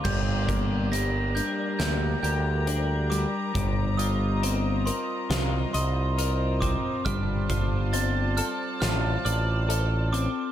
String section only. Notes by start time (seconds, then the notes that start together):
0.04 G4 A#4 D5 A#5
3.54 F4 C5 D#5
7.06 D5 A5